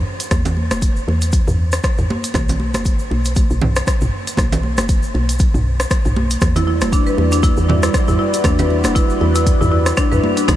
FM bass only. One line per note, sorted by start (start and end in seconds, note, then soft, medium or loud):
0.31 0.73 E2 medium
0.71 1.03 E1 loud
1.08 1.41 E2 medium
1.48 1.79 E2 medium
1.98 2.06 E2 medium
2.34 2.76 B1 loud
2.74 3.06 F#1 loud
3.11 3.44 B1 medium
3.50 3.82 B1 medium
4.01 4.10 B1 medium
4.38 4.79 B1 medium
4.78 5.09 F#1 loud
5.14 5.48 B1 medium
5.54 5.86 B1 medium
6.05 6.37 B1 medium
6.42 6.83 E2 loud
6.81 7.13 E1 loud
7.18 7.51 E2 medium
7.57 7.89 E2 loud
8.08 8.16 E2 medium
8.45 8.86 E2 loud
8.84 9.16 E1 loud
9.21 9.54 E2 medium
9.61 9.93 E2 loud
10.12 10.20 E2 medium
10.48 10.56 B1 loud